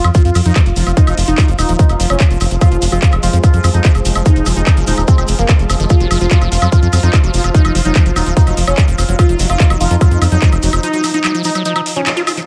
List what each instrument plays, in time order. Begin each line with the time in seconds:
Already playing: synth texture F3 F4
0.04 analog synth bass F2, closed hi-hat, high woodblock, shekere
0.14 acid bass F3, analog synth lead F4, kick, closed hi-hat, shekere
0.25 analog synth bass F2, acid bass F3, closed hi-hat, shekere
0.35 analog synth bass F2, open hi-hat, high woodblock, shekere
0.46 analog synth bass F2, acid bass F3, analog synth lead D#4, closed hi-hat, shekere
0.56 acid bass F3, kick, clap, closed hi-hat, high woodblock, shekere
0.66 analog synth bass F1, closed hi-hat, shekere
0.76 analog synth bass F1, acid bass F3, open hi-hat, shekere
0.87 analog synth bass F1, acid bass F3, closed hi-hat, high woodblock, shekere
0.97 analog synth lead D#4, kick, closed hi-hat, shekere
1.07 analog synth bass F1, acid bass F3, closed hi-hat, high woodblock, shekere
1.17 analog synth bass F1, acid bass F3, open hi-hat, shekere
1.27 analog synth bass F1, analog synth lead D#4, closed hi-hat, shekere
1.38 acid bass F3, kick, clap, closed hi-hat, high woodblock, shekere
1.48 analog synth bass F#1, acid bass F3, closed hi-hat, shekere
1.59 analog synth bass D#1, analog synth lead D#4, open hi-hat, high woodblock, shekere
1.69 analog synth bass D#1, acid bass F3, closed hi-hat, shekere
1.79 acid bass F3, analog synth lead D#4, kick, closed hi-hat, shekere
1.89 analog synth bass F1, closed hi-hat, high woodblock, shekere
2.00 analog synth bass F1, acid bass F3, open hi-hat, shekere
2.10 analog synth bass F1, acid bass F3, analog synth lead C#4, closed hi-hat, high woodblock, shekere
2.20 kick, clap, closed hi-hat, shekere
2.31 analog synth bass F1, acid bass F3, closed hi-hat, shekere
2.40 analog synth bass F1, acid bass F3, open hi-hat, high woodblock, shekere
2.51 analog synth bass F1, closed hi-hat, shekere
2.61 acid bass F3, synth texture G#3, analog synth lead F4, kick, closed hi-hat, high woodblock, shekere
2.71 analog synth bass F1, acid bass F3, closed hi-hat, shekere
2.82 analog synth bass F1, open hi-hat, shekere
2.92 analog synth bass F1, acid bass F3, analog synth lead F4, closed hi-hat, high woodblock, shekere
3.02 acid bass F3, kick, clap, closed hi-hat, shekere
3.11 analog synth bass F1, closed hi-hat, high woodblock, shekere
3.23 analog synth bass F1, acid bass F3, analog synth lead F4, open hi-hat, shekere
3.33 analog synth bass F2, acid bass F3, closed hi-hat, shekere
3.43 analog synth lead F4, kick, closed hi-hat, high woodblock, shekere
3.53 analog synth bass F2, acid bass F3, closed hi-hat, shekere
3.64 analog synth bass F2, acid bass F3, open hi-hat, high woodblock, shekere
3.74 analog synth bass F2, analog synth lead D#4, closed hi-hat, shekere
3.84 acid bass F3, kick, clap, closed hi-hat, shekere
3.94 analog synth bass F1, acid bass F3, closed hi-hat, high woodblock, shekere
4.05 analog synth bass F1, open hi-hat, shekere
4.15 analog synth bass F1, acid bass F3, closed hi-hat, high woodblock, shekere
4.26 acid bass F3, analog synth lead D#4, kick, closed hi-hat, shekere
4.36 analog synth bass F1, closed hi-hat, shekere
4.46 analog synth bass F1, acid bass F3, open hi-hat, high woodblock, shekere
4.57 analog synth bass F1, acid bass F3, analog synth lead D#4, closed hi-hat, shekere
4.67 kick, clap, closed hi-hat, high woodblock, shekere
4.77 analog synth bass F#1, acid bass F3, closed hi-hat, shekere
4.87 analog synth bass D#1, acid bass F3, analog synth lead D#4, open hi-hat, shekere
4.98 analog synth bass D#1, closed hi-hat, high woodblock, shekere
5.08 acid bass F3, analog synth lead C4, kick, closed hi-hat, shekere
5.18 analog synth bass F1, acid bass F3, closed hi-hat, high woodblock, shekere
5.28 analog synth bass F1, open hi-hat, shekere
5.39 analog synth bass F1, acid bass F3, analog synth lead A#3, closed hi-hat, shekere
5.49 acid bass F#3, kick, clap, closed hi-hat, high woodblock, shekere
5.59 analog synth bass F1, closed hi-hat, shekere
5.70 analog synth bass F1, acid bass F3, open hi-hat, high woodblock, shekere
5.80 analog synth bass F1, acid bass D#3, closed hi-hat, shekere
5.90 acid bass F3, analog synth lead F4, synth texture F4, kick, closed hi-hat, high woodblock, shekere
6.00 analog synth bass F1, acid bass F#3, closed hi-hat, shekere
6.11 analog synth bass F1, acid bass F3, open hi-hat, high woodblock, shekere
6.21 analog synth bass F1, acid bass F3, analog synth lead F4, closed hi-hat, shekere
6.31 acid bass F#3, kick, clap, closed hi-hat, shekere
6.41 analog synth bass F1, acid bass F3, closed hi-hat, high woodblock, shekere
6.52 analog synth bass F1, acid bass F3, analog synth lead F4, open hi-hat, shekere
6.62 analog synth bass F2, acid bass F#3, closed hi-hat, high woodblock, shekere
6.72 acid bass F3, analog synth lead F4, kick, closed hi-hat, shekere
6.82 analog synth bass F2, acid bass F3, closed hi-hat, shekere
6.93 analog synth bass F2, acid bass F#3, open hi-hat, high woodblock, shekere
7.03 analog synth bass F2, acid bass F3, analog synth lead D#4, closed hi-hat, shekere
7.13 acid bass F3, kick, clap, closed hi-hat, high woodblock, shekere
7.24 analog synth bass F1, acid bass F#3, closed hi-hat, shekere
7.33 analog synth bass F1, acid bass F3, open hi-hat, shekere
7.44 analog synth bass F1, acid bass F3, closed hi-hat, high woodblock, shekere
7.54 acid bass F#3, analog synth lead D#4, kick, closed hi-hat, shekere
7.65 analog synth bass F1, acid bass F3, closed hi-hat, high woodblock, shekere
7.75 analog synth bass F1, acid bass F3, open hi-hat, shekere
7.85 analog synth bass F1, acid bass F#3, analog synth lead D#4, closed hi-hat, shekere
7.95 acid bass F3, kick, clap, closed hi-hat, high woodblock, shekere
8.06 analog synth bass F#1, acid bass F3, closed hi-hat, shekere
8.16 analog synth bass D#1, acid bass F#3, analog synth lead D#4, open hi-hat, high woodblock, shekere
8.26 analog synth bass D#1, acid bass F3, closed hi-hat, shekere
8.37 acid bass F3, analog synth lead D#4, kick, closed hi-hat, shekere
8.47 analog synth bass F1, acid bass F#3, closed hi-hat, high woodblock, shekere
8.57 analog synth bass F1, acid bass F3, open hi-hat, shekere
8.67 analog synth bass F1, acid bass F3, analog synth lead C#4, closed hi-hat, high woodblock, shekere
8.78 acid bass F#3, kick, clap, closed hi-hat, shekere
8.88 analog synth bass F1, acid bass F3, closed hi-hat, shekere
8.98 analog synth bass F1, acid bass F3, open hi-hat, high woodblock, shekere
9.09 analog synth bass F1, acid bass F#3, closed hi-hat, shekere
9.19 acid bass F3, synth texture D#4, analog synth lead F4, kick, closed hi-hat, high woodblock, shekere
9.29 analog synth bass F1, acid bass F3, closed hi-hat, shekere
9.39 analog synth bass F1, acid bass F#3, open hi-hat, shekere
9.49 analog synth bass F1, acid bass F3, analog synth lead F4, closed hi-hat, high woodblock, shekere
9.60 acid bass F3, kick, clap, closed hi-hat, shekere
9.70 analog synth bass F1, acid bass F#3, closed hi-hat, high woodblock, shekere
9.80 analog synth bass F1, acid bass F3, analog synth lead F4, open hi-hat, shekere
9.91 analog synth bass F2, acid bass F3, closed hi-hat, shekere
10.01 acid bass F#3, analog synth lead F4, kick, closed hi-hat, high woodblock, shekere
10.11 analog synth bass F2, acid bass F3, closed hi-hat, shekere
10.22 analog synth bass F2, acid bass F3, open hi-hat, high woodblock, shekere
10.32 analog synth bass F2, acid bass F#3, analog synth lead D#4, closed hi-hat, shekere
10.42 acid bass F3, kick, clap, closed hi-hat, shekere
10.52 analog synth bass F1, acid bass F3, closed hi-hat, high woodblock, shekere
10.63 analog synth bass F1, acid bass F#3, open hi-hat, shekere
10.73 analog synth bass F1, acid bass F3, closed hi-hat, high woodblock, shekere
10.83 acid bass F3, analog synth lead D#4, closed hi-hat, shekere
10.93 acid bass F#3, closed hi-hat, shekere
11.03 acid bass F3, open hi-hat, high woodblock, shekere
11.14 acid bass F3, analog synth lead D#4, closed hi-hat, shekere
11.24 acid bass F#3, clap, closed hi-hat, high woodblock, shekere
11.35 acid bass F3, closed hi-hat, shekere
11.44 acid bass F3, analog synth lead D#4, open hi-hat, shekere
11.55 acid bass F#3, closed hi-hat, high woodblock, shekere
11.65 acid bass F3, analog synth lead D#4, closed hi-hat, shekere
11.76 acid bass F3, closed hi-hat, high woodblock, shekere
11.86 open hi-hat, shekere
11.96 acid bass F3, analog synth lead C#4, closed hi-hat, shekere
12.07 acid bass F3, clap, closed hi-hat, high woodblock, shekere
12.17 acid bass F4, closed hi-hat, shekere
12.27 acid bass F4, open hi-hat, high woodblock, shekere
12.37 acid bass F3, closed hi-hat, shekere